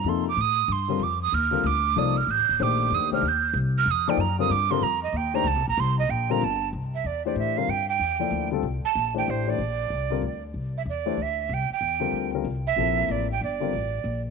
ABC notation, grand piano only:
X:1
M:3/4
L:1/8
Q:"Swing" 1/4=189
K:Fmix
V:1 name="Grand piano"
[C,F,B,EA] z4 [D,G,CFB] | z3 [D,G,CFB] z2 | [F,B,EAd] z3 [E,A,DGc]2- | [E,A,DGc] [E,A,DGc] z4 |
z [F,B,EAd] z [D,G,CFB] z [D,G,CFB] | z3 [E,A,DGc] z2 | z3 [D,G,CFB] z2 | [K:Cmix] z3 [E,A,DGc]2 [D,G,CFB] |
z3 [F,B,EAd]2 [D,G,CFA] | z3 [E,A,DGc]2 [E,A,DGc] | z3 [D,G,CFB] z2 | z3 [E,A,DGc] z2 |
z3 [D,G,CFB]2 [D,G,CFB] | z2 [C,F,B,EA]3 z | z [D,G,CFB] z4 |]